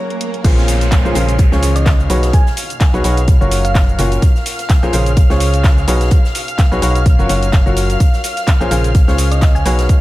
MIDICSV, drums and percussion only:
0, 0, Header, 1, 2, 480
1, 0, Start_track
1, 0, Key_signature, -5, "minor"
1, 0, Tempo, 472441
1, 452, Time_signature, 4, 2, 24, 8
1, 10168, End_track
2, 0, Start_track
2, 0, Title_t, "Drums"
2, 106, Note_on_c, 9, 42, 33
2, 207, Note_off_c, 9, 42, 0
2, 211, Note_on_c, 9, 42, 79
2, 313, Note_off_c, 9, 42, 0
2, 346, Note_on_c, 9, 42, 34
2, 447, Note_off_c, 9, 42, 0
2, 452, Note_on_c, 9, 36, 113
2, 452, Note_on_c, 9, 42, 71
2, 452, Note_on_c, 9, 49, 105
2, 457, Note_on_c, 9, 82, 45
2, 460, Note_off_c, 9, 42, 0
2, 460, Note_on_c, 9, 42, 87
2, 554, Note_off_c, 9, 36, 0
2, 554, Note_off_c, 9, 49, 0
2, 558, Note_off_c, 9, 82, 0
2, 561, Note_off_c, 9, 42, 0
2, 590, Note_on_c, 9, 82, 23
2, 592, Note_on_c, 9, 38, 43
2, 688, Note_off_c, 9, 38, 0
2, 688, Note_on_c, 9, 38, 42
2, 689, Note_on_c, 9, 42, 72
2, 692, Note_off_c, 9, 82, 0
2, 692, Note_on_c, 9, 46, 104
2, 697, Note_on_c, 9, 82, 78
2, 790, Note_off_c, 9, 38, 0
2, 791, Note_off_c, 9, 42, 0
2, 793, Note_off_c, 9, 46, 0
2, 798, Note_off_c, 9, 82, 0
2, 824, Note_on_c, 9, 38, 40
2, 826, Note_on_c, 9, 42, 56
2, 831, Note_on_c, 9, 82, 34
2, 925, Note_off_c, 9, 38, 0
2, 925, Note_on_c, 9, 38, 116
2, 928, Note_off_c, 9, 42, 0
2, 932, Note_off_c, 9, 82, 0
2, 932, Note_on_c, 9, 36, 123
2, 932, Note_on_c, 9, 42, 72
2, 934, Note_on_c, 9, 39, 127
2, 935, Note_off_c, 9, 42, 0
2, 935, Note_on_c, 9, 42, 81
2, 937, Note_on_c, 9, 82, 47
2, 1027, Note_off_c, 9, 38, 0
2, 1033, Note_off_c, 9, 36, 0
2, 1036, Note_off_c, 9, 39, 0
2, 1037, Note_off_c, 9, 42, 0
2, 1038, Note_off_c, 9, 82, 0
2, 1071, Note_on_c, 9, 82, 24
2, 1167, Note_on_c, 9, 42, 71
2, 1172, Note_off_c, 9, 82, 0
2, 1172, Note_on_c, 9, 46, 91
2, 1177, Note_on_c, 9, 82, 80
2, 1269, Note_off_c, 9, 42, 0
2, 1274, Note_off_c, 9, 46, 0
2, 1279, Note_off_c, 9, 82, 0
2, 1306, Note_on_c, 9, 42, 55
2, 1311, Note_on_c, 9, 82, 34
2, 1407, Note_off_c, 9, 42, 0
2, 1407, Note_on_c, 9, 42, 86
2, 1412, Note_on_c, 9, 36, 117
2, 1413, Note_off_c, 9, 42, 0
2, 1413, Note_off_c, 9, 82, 0
2, 1413, Note_on_c, 9, 42, 70
2, 1417, Note_on_c, 9, 82, 45
2, 1513, Note_off_c, 9, 36, 0
2, 1514, Note_off_c, 9, 42, 0
2, 1519, Note_off_c, 9, 82, 0
2, 1544, Note_on_c, 9, 38, 56
2, 1551, Note_on_c, 9, 82, 23
2, 1645, Note_off_c, 9, 38, 0
2, 1652, Note_on_c, 9, 46, 109
2, 1653, Note_off_c, 9, 82, 0
2, 1654, Note_on_c, 9, 42, 75
2, 1657, Note_on_c, 9, 82, 79
2, 1754, Note_off_c, 9, 46, 0
2, 1756, Note_off_c, 9, 42, 0
2, 1758, Note_off_c, 9, 82, 0
2, 1786, Note_on_c, 9, 42, 57
2, 1791, Note_on_c, 9, 82, 34
2, 1888, Note_off_c, 9, 42, 0
2, 1888, Note_on_c, 9, 38, 110
2, 1890, Note_on_c, 9, 42, 92
2, 1892, Note_off_c, 9, 82, 0
2, 1892, Note_on_c, 9, 36, 119
2, 1894, Note_on_c, 9, 39, 124
2, 1897, Note_on_c, 9, 82, 45
2, 1990, Note_off_c, 9, 38, 0
2, 1992, Note_off_c, 9, 42, 0
2, 1993, Note_off_c, 9, 36, 0
2, 1996, Note_off_c, 9, 39, 0
2, 1998, Note_off_c, 9, 82, 0
2, 2030, Note_on_c, 9, 82, 21
2, 2131, Note_on_c, 9, 46, 91
2, 2132, Note_off_c, 9, 82, 0
2, 2133, Note_on_c, 9, 42, 70
2, 2136, Note_on_c, 9, 82, 79
2, 2233, Note_off_c, 9, 46, 0
2, 2235, Note_off_c, 9, 42, 0
2, 2238, Note_off_c, 9, 82, 0
2, 2259, Note_on_c, 9, 38, 64
2, 2266, Note_on_c, 9, 42, 54
2, 2270, Note_on_c, 9, 82, 33
2, 2361, Note_off_c, 9, 38, 0
2, 2367, Note_off_c, 9, 42, 0
2, 2370, Note_on_c, 9, 42, 88
2, 2371, Note_on_c, 9, 36, 124
2, 2372, Note_off_c, 9, 42, 0
2, 2372, Note_off_c, 9, 82, 0
2, 2372, Note_on_c, 9, 42, 69
2, 2376, Note_on_c, 9, 82, 43
2, 2473, Note_off_c, 9, 36, 0
2, 2473, Note_off_c, 9, 42, 0
2, 2478, Note_off_c, 9, 82, 0
2, 2505, Note_on_c, 9, 38, 60
2, 2510, Note_on_c, 9, 82, 21
2, 2607, Note_off_c, 9, 38, 0
2, 2608, Note_on_c, 9, 42, 62
2, 2611, Note_on_c, 9, 46, 110
2, 2612, Note_off_c, 9, 82, 0
2, 2616, Note_on_c, 9, 82, 74
2, 2709, Note_off_c, 9, 42, 0
2, 2713, Note_off_c, 9, 46, 0
2, 2717, Note_off_c, 9, 82, 0
2, 2745, Note_on_c, 9, 42, 57
2, 2750, Note_on_c, 9, 82, 35
2, 2847, Note_off_c, 9, 42, 0
2, 2847, Note_on_c, 9, 42, 85
2, 2848, Note_on_c, 9, 38, 108
2, 2850, Note_off_c, 9, 42, 0
2, 2850, Note_on_c, 9, 42, 69
2, 2851, Note_off_c, 9, 82, 0
2, 2851, Note_on_c, 9, 36, 125
2, 2853, Note_on_c, 9, 39, 127
2, 2855, Note_on_c, 9, 82, 43
2, 2950, Note_off_c, 9, 38, 0
2, 2952, Note_off_c, 9, 42, 0
2, 2953, Note_off_c, 9, 36, 0
2, 2954, Note_off_c, 9, 39, 0
2, 2957, Note_off_c, 9, 82, 0
2, 2989, Note_on_c, 9, 82, 22
2, 3090, Note_off_c, 9, 82, 0
2, 3091, Note_on_c, 9, 46, 102
2, 3095, Note_on_c, 9, 82, 80
2, 3096, Note_on_c, 9, 42, 68
2, 3192, Note_off_c, 9, 46, 0
2, 3197, Note_off_c, 9, 82, 0
2, 3198, Note_off_c, 9, 42, 0
2, 3224, Note_on_c, 9, 42, 54
2, 3229, Note_on_c, 9, 82, 32
2, 3326, Note_off_c, 9, 42, 0
2, 3328, Note_on_c, 9, 42, 86
2, 3331, Note_off_c, 9, 42, 0
2, 3331, Note_off_c, 9, 82, 0
2, 3331, Note_on_c, 9, 36, 125
2, 3331, Note_on_c, 9, 42, 70
2, 3335, Note_on_c, 9, 82, 44
2, 3432, Note_off_c, 9, 42, 0
2, 3433, Note_off_c, 9, 36, 0
2, 3437, Note_off_c, 9, 82, 0
2, 3469, Note_on_c, 9, 82, 22
2, 3571, Note_off_c, 9, 82, 0
2, 3571, Note_on_c, 9, 46, 111
2, 3573, Note_on_c, 9, 42, 72
2, 3575, Note_on_c, 9, 82, 76
2, 3672, Note_off_c, 9, 46, 0
2, 3674, Note_off_c, 9, 42, 0
2, 3677, Note_off_c, 9, 82, 0
2, 3705, Note_on_c, 9, 42, 58
2, 3710, Note_on_c, 9, 82, 33
2, 3807, Note_off_c, 9, 42, 0
2, 3810, Note_on_c, 9, 42, 78
2, 3811, Note_off_c, 9, 82, 0
2, 3811, Note_on_c, 9, 36, 127
2, 3812, Note_on_c, 9, 38, 123
2, 3813, Note_on_c, 9, 39, 127
2, 3815, Note_on_c, 9, 82, 44
2, 3912, Note_off_c, 9, 42, 0
2, 3913, Note_off_c, 9, 36, 0
2, 3914, Note_off_c, 9, 38, 0
2, 3914, Note_off_c, 9, 39, 0
2, 3917, Note_off_c, 9, 82, 0
2, 3949, Note_on_c, 9, 82, 21
2, 4050, Note_on_c, 9, 46, 99
2, 4051, Note_off_c, 9, 82, 0
2, 4055, Note_on_c, 9, 82, 77
2, 4062, Note_on_c, 9, 42, 76
2, 4152, Note_off_c, 9, 46, 0
2, 4157, Note_off_c, 9, 82, 0
2, 4163, Note_off_c, 9, 42, 0
2, 4185, Note_on_c, 9, 42, 53
2, 4186, Note_off_c, 9, 42, 0
2, 4186, Note_on_c, 9, 42, 47
2, 4189, Note_on_c, 9, 82, 32
2, 4288, Note_off_c, 9, 42, 0
2, 4291, Note_off_c, 9, 82, 0
2, 4291, Note_on_c, 9, 36, 124
2, 4291, Note_on_c, 9, 42, 65
2, 4294, Note_off_c, 9, 42, 0
2, 4294, Note_on_c, 9, 42, 96
2, 4295, Note_on_c, 9, 82, 45
2, 4393, Note_off_c, 9, 36, 0
2, 4396, Note_off_c, 9, 42, 0
2, 4397, Note_off_c, 9, 82, 0
2, 4429, Note_on_c, 9, 38, 37
2, 4429, Note_on_c, 9, 82, 21
2, 4525, Note_off_c, 9, 38, 0
2, 4525, Note_on_c, 9, 38, 40
2, 4530, Note_on_c, 9, 46, 116
2, 4531, Note_off_c, 9, 82, 0
2, 4533, Note_on_c, 9, 42, 73
2, 4535, Note_on_c, 9, 82, 75
2, 4627, Note_off_c, 9, 38, 0
2, 4632, Note_off_c, 9, 46, 0
2, 4635, Note_off_c, 9, 42, 0
2, 4637, Note_off_c, 9, 82, 0
2, 4661, Note_on_c, 9, 38, 44
2, 4664, Note_on_c, 9, 42, 53
2, 4669, Note_on_c, 9, 82, 33
2, 4762, Note_off_c, 9, 38, 0
2, 4766, Note_off_c, 9, 42, 0
2, 4770, Note_off_c, 9, 82, 0
2, 4770, Note_on_c, 9, 42, 66
2, 4772, Note_on_c, 9, 36, 127
2, 4772, Note_on_c, 9, 39, 125
2, 4773, Note_off_c, 9, 42, 0
2, 4773, Note_on_c, 9, 42, 90
2, 4774, Note_on_c, 9, 82, 43
2, 4776, Note_on_c, 9, 38, 108
2, 4873, Note_off_c, 9, 36, 0
2, 4873, Note_off_c, 9, 39, 0
2, 4875, Note_off_c, 9, 42, 0
2, 4876, Note_off_c, 9, 82, 0
2, 4877, Note_off_c, 9, 38, 0
2, 4909, Note_on_c, 9, 82, 22
2, 5006, Note_on_c, 9, 42, 69
2, 5011, Note_off_c, 9, 82, 0
2, 5011, Note_on_c, 9, 46, 99
2, 5016, Note_on_c, 9, 82, 74
2, 5107, Note_off_c, 9, 42, 0
2, 5113, Note_off_c, 9, 46, 0
2, 5117, Note_off_c, 9, 82, 0
2, 5145, Note_on_c, 9, 42, 54
2, 5149, Note_on_c, 9, 82, 33
2, 5246, Note_off_c, 9, 42, 0
2, 5249, Note_on_c, 9, 42, 94
2, 5251, Note_off_c, 9, 42, 0
2, 5251, Note_off_c, 9, 82, 0
2, 5251, Note_on_c, 9, 42, 65
2, 5252, Note_on_c, 9, 36, 126
2, 5256, Note_on_c, 9, 82, 44
2, 5353, Note_off_c, 9, 42, 0
2, 5354, Note_off_c, 9, 36, 0
2, 5357, Note_off_c, 9, 82, 0
2, 5386, Note_on_c, 9, 38, 62
2, 5390, Note_on_c, 9, 82, 22
2, 5488, Note_off_c, 9, 38, 0
2, 5491, Note_off_c, 9, 82, 0
2, 5491, Note_on_c, 9, 46, 114
2, 5495, Note_on_c, 9, 82, 76
2, 5498, Note_on_c, 9, 42, 70
2, 5592, Note_off_c, 9, 46, 0
2, 5597, Note_off_c, 9, 82, 0
2, 5600, Note_off_c, 9, 42, 0
2, 5625, Note_on_c, 9, 42, 55
2, 5630, Note_on_c, 9, 82, 34
2, 5726, Note_off_c, 9, 42, 0
2, 5728, Note_on_c, 9, 42, 85
2, 5731, Note_off_c, 9, 82, 0
2, 5732, Note_on_c, 9, 36, 127
2, 5733, Note_on_c, 9, 39, 120
2, 5736, Note_on_c, 9, 82, 43
2, 5737, Note_on_c, 9, 38, 124
2, 5830, Note_off_c, 9, 42, 0
2, 5834, Note_off_c, 9, 36, 0
2, 5835, Note_off_c, 9, 39, 0
2, 5837, Note_off_c, 9, 82, 0
2, 5839, Note_off_c, 9, 38, 0
2, 5870, Note_on_c, 9, 82, 22
2, 5970, Note_on_c, 9, 42, 65
2, 5971, Note_off_c, 9, 82, 0
2, 5971, Note_on_c, 9, 46, 101
2, 5976, Note_on_c, 9, 82, 75
2, 6071, Note_off_c, 9, 42, 0
2, 6072, Note_off_c, 9, 46, 0
2, 6077, Note_off_c, 9, 82, 0
2, 6105, Note_on_c, 9, 42, 50
2, 6106, Note_on_c, 9, 38, 65
2, 6110, Note_on_c, 9, 82, 31
2, 6205, Note_off_c, 9, 42, 0
2, 6205, Note_on_c, 9, 42, 88
2, 6207, Note_off_c, 9, 38, 0
2, 6211, Note_off_c, 9, 42, 0
2, 6211, Note_off_c, 9, 82, 0
2, 6211, Note_on_c, 9, 42, 65
2, 6212, Note_on_c, 9, 36, 120
2, 6216, Note_on_c, 9, 82, 45
2, 6313, Note_off_c, 9, 42, 0
2, 6314, Note_off_c, 9, 36, 0
2, 6317, Note_off_c, 9, 82, 0
2, 6346, Note_on_c, 9, 38, 55
2, 6350, Note_on_c, 9, 82, 21
2, 6448, Note_off_c, 9, 38, 0
2, 6451, Note_on_c, 9, 46, 110
2, 6452, Note_off_c, 9, 82, 0
2, 6452, Note_on_c, 9, 42, 70
2, 6456, Note_on_c, 9, 82, 77
2, 6553, Note_off_c, 9, 46, 0
2, 6554, Note_off_c, 9, 42, 0
2, 6558, Note_off_c, 9, 82, 0
2, 6585, Note_on_c, 9, 42, 55
2, 6590, Note_on_c, 9, 82, 35
2, 6687, Note_off_c, 9, 42, 0
2, 6688, Note_on_c, 9, 42, 80
2, 6691, Note_off_c, 9, 42, 0
2, 6691, Note_on_c, 9, 42, 66
2, 6692, Note_off_c, 9, 82, 0
2, 6692, Note_on_c, 9, 36, 127
2, 6693, Note_on_c, 9, 38, 121
2, 6693, Note_on_c, 9, 39, 119
2, 6696, Note_on_c, 9, 82, 44
2, 6793, Note_off_c, 9, 36, 0
2, 6793, Note_off_c, 9, 42, 0
2, 6795, Note_off_c, 9, 38, 0
2, 6795, Note_off_c, 9, 39, 0
2, 6798, Note_off_c, 9, 82, 0
2, 6830, Note_on_c, 9, 82, 23
2, 6930, Note_on_c, 9, 42, 73
2, 6932, Note_off_c, 9, 82, 0
2, 6932, Note_on_c, 9, 46, 101
2, 6936, Note_on_c, 9, 82, 77
2, 7032, Note_off_c, 9, 42, 0
2, 7033, Note_off_c, 9, 46, 0
2, 7038, Note_off_c, 9, 82, 0
2, 7066, Note_on_c, 9, 42, 51
2, 7070, Note_on_c, 9, 82, 32
2, 7167, Note_off_c, 9, 42, 0
2, 7171, Note_on_c, 9, 42, 65
2, 7172, Note_off_c, 9, 82, 0
2, 7172, Note_on_c, 9, 36, 126
2, 7174, Note_off_c, 9, 42, 0
2, 7174, Note_on_c, 9, 42, 93
2, 7176, Note_on_c, 9, 82, 42
2, 7273, Note_off_c, 9, 36, 0
2, 7275, Note_off_c, 9, 42, 0
2, 7278, Note_off_c, 9, 82, 0
2, 7310, Note_on_c, 9, 82, 22
2, 7411, Note_off_c, 9, 82, 0
2, 7411, Note_on_c, 9, 46, 112
2, 7413, Note_on_c, 9, 42, 74
2, 7415, Note_on_c, 9, 82, 74
2, 7512, Note_off_c, 9, 46, 0
2, 7515, Note_off_c, 9, 42, 0
2, 7517, Note_off_c, 9, 82, 0
2, 7544, Note_on_c, 9, 42, 53
2, 7549, Note_on_c, 9, 82, 34
2, 7645, Note_off_c, 9, 42, 0
2, 7645, Note_on_c, 9, 42, 97
2, 7649, Note_on_c, 9, 38, 115
2, 7651, Note_off_c, 9, 82, 0
2, 7652, Note_on_c, 9, 36, 127
2, 7653, Note_on_c, 9, 39, 119
2, 7655, Note_on_c, 9, 82, 43
2, 7747, Note_off_c, 9, 42, 0
2, 7750, Note_off_c, 9, 38, 0
2, 7754, Note_off_c, 9, 36, 0
2, 7754, Note_off_c, 9, 39, 0
2, 7757, Note_off_c, 9, 82, 0
2, 7789, Note_on_c, 9, 82, 22
2, 7889, Note_on_c, 9, 42, 63
2, 7891, Note_off_c, 9, 82, 0
2, 7891, Note_on_c, 9, 46, 97
2, 7896, Note_on_c, 9, 82, 77
2, 7991, Note_off_c, 9, 42, 0
2, 7993, Note_off_c, 9, 46, 0
2, 7997, Note_off_c, 9, 82, 0
2, 8021, Note_on_c, 9, 42, 46
2, 8024, Note_off_c, 9, 42, 0
2, 8024, Note_on_c, 9, 42, 50
2, 8029, Note_on_c, 9, 82, 32
2, 8126, Note_off_c, 9, 42, 0
2, 8129, Note_on_c, 9, 42, 88
2, 8131, Note_off_c, 9, 42, 0
2, 8131, Note_off_c, 9, 82, 0
2, 8131, Note_on_c, 9, 42, 63
2, 8132, Note_on_c, 9, 36, 117
2, 8136, Note_on_c, 9, 82, 47
2, 8232, Note_off_c, 9, 42, 0
2, 8233, Note_off_c, 9, 36, 0
2, 8237, Note_off_c, 9, 82, 0
2, 8261, Note_on_c, 9, 38, 42
2, 8270, Note_on_c, 9, 82, 23
2, 8363, Note_off_c, 9, 38, 0
2, 8370, Note_on_c, 9, 42, 67
2, 8371, Note_off_c, 9, 82, 0
2, 8371, Note_on_c, 9, 46, 105
2, 8373, Note_on_c, 9, 38, 45
2, 8376, Note_on_c, 9, 82, 78
2, 8471, Note_off_c, 9, 42, 0
2, 8473, Note_off_c, 9, 46, 0
2, 8475, Note_off_c, 9, 38, 0
2, 8477, Note_off_c, 9, 82, 0
2, 8497, Note_on_c, 9, 38, 42
2, 8505, Note_on_c, 9, 42, 53
2, 8509, Note_on_c, 9, 82, 36
2, 8598, Note_off_c, 9, 38, 0
2, 8601, Note_on_c, 9, 38, 122
2, 8606, Note_off_c, 9, 42, 0
2, 8611, Note_off_c, 9, 82, 0
2, 8611, Note_on_c, 9, 42, 66
2, 8612, Note_on_c, 9, 36, 122
2, 8613, Note_on_c, 9, 39, 119
2, 8614, Note_off_c, 9, 42, 0
2, 8614, Note_on_c, 9, 42, 98
2, 8615, Note_on_c, 9, 82, 47
2, 8702, Note_off_c, 9, 38, 0
2, 8713, Note_off_c, 9, 36, 0
2, 8714, Note_off_c, 9, 39, 0
2, 8716, Note_off_c, 9, 42, 0
2, 8717, Note_off_c, 9, 82, 0
2, 8749, Note_on_c, 9, 82, 23
2, 8851, Note_off_c, 9, 82, 0
2, 8851, Note_on_c, 9, 46, 92
2, 8855, Note_on_c, 9, 82, 80
2, 8856, Note_on_c, 9, 42, 76
2, 8952, Note_off_c, 9, 46, 0
2, 8957, Note_off_c, 9, 42, 0
2, 8957, Note_off_c, 9, 82, 0
2, 8985, Note_on_c, 9, 42, 53
2, 8990, Note_on_c, 9, 82, 34
2, 9087, Note_off_c, 9, 42, 0
2, 9088, Note_on_c, 9, 42, 85
2, 9091, Note_off_c, 9, 42, 0
2, 9091, Note_off_c, 9, 82, 0
2, 9091, Note_on_c, 9, 42, 65
2, 9092, Note_on_c, 9, 36, 119
2, 9096, Note_on_c, 9, 82, 46
2, 9192, Note_off_c, 9, 42, 0
2, 9193, Note_off_c, 9, 36, 0
2, 9197, Note_off_c, 9, 82, 0
2, 9224, Note_on_c, 9, 38, 63
2, 9230, Note_on_c, 9, 82, 23
2, 9325, Note_off_c, 9, 38, 0
2, 9327, Note_on_c, 9, 42, 69
2, 9331, Note_off_c, 9, 82, 0
2, 9331, Note_on_c, 9, 46, 106
2, 9336, Note_on_c, 9, 82, 81
2, 9429, Note_off_c, 9, 42, 0
2, 9433, Note_off_c, 9, 46, 0
2, 9437, Note_off_c, 9, 82, 0
2, 9464, Note_on_c, 9, 42, 52
2, 9469, Note_on_c, 9, 82, 37
2, 9564, Note_off_c, 9, 42, 0
2, 9564, Note_on_c, 9, 42, 92
2, 9565, Note_on_c, 9, 38, 106
2, 9571, Note_off_c, 9, 82, 0
2, 9572, Note_on_c, 9, 36, 123
2, 9572, Note_on_c, 9, 39, 116
2, 9575, Note_on_c, 9, 82, 47
2, 9666, Note_off_c, 9, 38, 0
2, 9666, Note_off_c, 9, 42, 0
2, 9673, Note_off_c, 9, 36, 0
2, 9674, Note_off_c, 9, 39, 0
2, 9677, Note_off_c, 9, 82, 0
2, 9709, Note_on_c, 9, 82, 22
2, 9810, Note_on_c, 9, 46, 96
2, 9811, Note_off_c, 9, 82, 0
2, 9815, Note_on_c, 9, 42, 70
2, 9815, Note_on_c, 9, 82, 80
2, 9912, Note_off_c, 9, 46, 0
2, 9916, Note_off_c, 9, 42, 0
2, 9917, Note_off_c, 9, 82, 0
2, 9944, Note_on_c, 9, 42, 50
2, 9945, Note_on_c, 9, 38, 68
2, 9949, Note_on_c, 9, 82, 34
2, 10046, Note_off_c, 9, 42, 0
2, 10047, Note_off_c, 9, 38, 0
2, 10049, Note_on_c, 9, 42, 84
2, 10050, Note_off_c, 9, 82, 0
2, 10051, Note_off_c, 9, 42, 0
2, 10051, Note_on_c, 9, 42, 66
2, 10052, Note_on_c, 9, 36, 110
2, 10055, Note_on_c, 9, 82, 49
2, 10152, Note_off_c, 9, 42, 0
2, 10153, Note_off_c, 9, 36, 0
2, 10157, Note_off_c, 9, 82, 0
2, 10168, End_track
0, 0, End_of_file